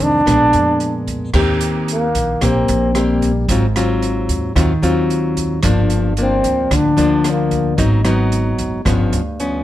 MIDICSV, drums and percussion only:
0, 0, Header, 1, 2, 480
1, 0, Start_track
1, 0, Key_signature, -3, "major"
1, 0, Tempo, 537153
1, 1198, Time_signature, 4, 2, 24, 8
1, 8611, End_track
2, 0, Start_track
2, 0, Title_t, "Drums"
2, 0, Note_on_c, 9, 42, 38
2, 1, Note_on_c, 9, 36, 24
2, 89, Note_off_c, 9, 42, 0
2, 90, Note_off_c, 9, 36, 0
2, 241, Note_on_c, 9, 36, 55
2, 243, Note_on_c, 9, 37, 55
2, 243, Note_on_c, 9, 42, 51
2, 330, Note_off_c, 9, 36, 0
2, 332, Note_off_c, 9, 37, 0
2, 332, Note_off_c, 9, 42, 0
2, 474, Note_on_c, 9, 42, 41
2, 564, Note_off_c, 9, 42, 0
2, 716, Note_on_c, 9, 42, 39
2, 805, Note_off_c, 9, 42, 0
2, 958, Note_on_c, 9, 36, 23
2, 961, Note_on_c, 9, 42, 39
2, 1047, Note_off_c, 9, 36, 0
2, 1051, Note_off_c, 9, 42, 0
2, 1194, Note_on_c, 9, 37, 61
2, 1194, Note_on_c, 9, 49, 62
2, 1197, Note_on_c, 9, 36, 62
2, 1283, Note_off_c, 9, 37, 0
2, 1283, Note_off_c, 9, 49, 0
2, 1286, Note_off_c, 9, 36, 0
2, 1435, Note_on_c, 9, 42, 45
2, 1524, Note_off_c, 9, 42, 0
2, 1682, Note_on_c, 9, 42, 41
2, 1772, Note_off_c, 9, 42, 0
2, 1917, Note_on_c, 9, 36, 23
2, 1920, Note_on_c, 9, 42, 44
2, 2006, Note_off_c, 9, 36, 0
2, 2010, Note_off_c, 9, 42, 0
2, 2156, Note_on_c, 9, 36, 53
2, 2158, Note_on_c, 9, 37, 58
2, 2158, Note_on_c, 9, 42, 55
2, 2245, Note_off_c, 9, 36, 0
2, 2247, Note_off_c, 9, 37, 0
2, 2247, Note_off_c, 9, 42, 0
2, 2398, Note_on_c, 9, 42, 42
2, 2487, Note_off_c, 9, 42, 0
2, 2636, Note_on_c, 9, 37, 52
2, 2636, Note_on_c, 9, 42, 36
2, 2725, Note_off_c, 9, 37, 0
2, 2725, Note_off_c, 9, 42, 0
2, 2874, Note_on_c, 9, 36, 22
2, 2880, Note_on_c, 9, 42, 35
2, 2963, Note_off_c, 9, 36, 0
2, 2969, Note_off_c, 9, 42, 0
2, 3114, Note_on_c, 9, 36, 60
2, 3116, Note_on_c, 9, 42, 59
2, 3203, Note_off_c, 9, 36, 0
2, 3205, Note_off_c, 9, 42, 0
2, 3359, Note_on_c, 9, 37, 56
2, 3359, Note_on_c, 9, 42, 42
2, 3448, Note_off_c, 9, 37, 0
2, 3448, Note_off_c, 9, 42, 0
2, 3596, Note_on_c, 9, 42, 38
2, 3686, Note_off_c, 9, 42, 0
2, 3832, Note_on_c, 9, 36, 25
2, 3834, Note_on_c, 9, 42, 46
2, 3922, Note_off_c, 9, 36, 0
2, 3924, Note_off_c, 9, 42, 0
2, 4074, Note_on_c, 9, 36, 57
2, 4077, Note_on_c, 9, 37, 59
2, 4077, Note_on_c, 9, 42, 53
2, 4164, Note_off_c, 9, 36, 0
2, 4166, Note_off_c, 9, 37, 0
2, 4166, Note_off_c, 9, 42, 0
2, 4317, Note_on_c, 9, 42, 41
2, 4406, Note_off_c, 9, 42, 0
2, 4561, Note_on_c, 9, 42, 36
2, 4650, Note_off_c, 9, 42, 0
2, 4795, Note_on_c, 9, 36, 21
2, 4798, Note_on_c, 9, 42, 42
2, 4884, Note_off_c, 9, 36, 0
2, 4888, Note_off_c, 9, 42, 0
2, 5027, Note_on_c, 9, 37, 55
2, 5027, Note_on_c, 9, 42, 67
2, 5034, Note_on_c, 9, 36, 62
2, 5117, Note_off_c, 9, 37, 0
2, 5117, Note_off_c, 9, 42, 0
2, 5123, Note_off_c, 9, 36, 0
2, 5270, Note_on_c, 9, 42, 42
2, 5360, Note_off_c, 9, 42, 0
2, 5513, Note_on_c, 9, 42, 46
2, 5602, Note_off_c, 9, 42, 0
2, 5755, Note_on_c, 9, 36, 24
2, 5755, Note_on_c, 9, 42, 46
2, 5845, Note_off_c, 9, 36, 0
2, 5845, Note_off_c, 9, 42, 0
2, 5996, Note_on_c, 9, 36, 50
2, 5997, Note_on_c, 9, 37, 61
2, 5997, Note_on_c, 9, 42, 54
2, 6085, Note_off_c, 9, 36, 0
2, 6086, Note_off_c, 9, 37, 0
2, 6086, Note_off_c, 9, 42, 0
2, 6233, Note_on_c, 9, 42, 42
2, 6322, Note_off_c, 9, 42, 0
2, 6473, Note_on_c, 9, 37, 55
2, 6473, Note_on_c, 9, 42, 39
2, 6562, Note_off_c, 9, 37, 0
2, 6562, Note_off_c, 9, 42, 0
2, 6712, Note_on_c, 9, 36, 23
2, 6713, Note_on_c, 9, 42, 34
2, 6802, Note_off_c, 9, 36, 0
2, 6802, Note_off_c, 9, 42, 0
2, 6952, Note_on_c, 9, 42, 59
2, 6953, Note_on_c, 9, 36, 60
2, 7042, Note_off_c, 9, 42, 0
2, 7043, Note_off_c, 9, 36, 0
2, 7190, Note_on_c, 9, 37, 54
2, 7190, Note_on_c, 9, 42, 37
2, 7279, Note_off_c, 9, 37, 0
2, 7279, Note_off_c, 9, 42, 0
2, 7435, Note_on_c, 9, 42, 39
2, 7524, Note_off_c, 9, 42, 0
2, 7672, Note_on_c, 9, 36, 25
2, 7672, Note_on_c, 9, 42, 42
2, 7761, Note_off_c, 9, 42, 0
2, 7762, Note_off_c, 9, 36, 0
2, 7913, Note_on_c, 9, 36, 51
2, 7916, Note_on_c, 9, 37, 60
2, 7916, Note_on_c, 9, 42, 52
2, 8002, Note_off_c, 9, 36, 0
2, 8006, Note_off_c, 9, 37, 0
2, 8006, Note_off_c, 9, 42, 0
2, 8156, Note_on_c, 9, 42, 40
2, 8245, Note_off_c, 9, 42, 0
2, 8397, Note_on_c, 9, 42, 33
2, 8486, Note_off_c, 9, 42, 0
2, 8611, End_track
0, 0, End_of_file